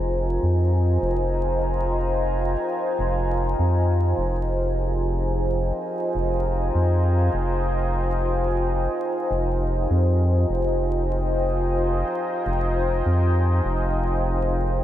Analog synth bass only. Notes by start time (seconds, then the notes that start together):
Already playing: F1
0.43 F2
1.02 F1
2.99 F1
3.59 F2
4.17 F1
6.15 F1
6.75 F2
7.34 F1
9.31 F1
9.90 F2
10.49 F1
12.46 F1
13.06 F2
13.65 F1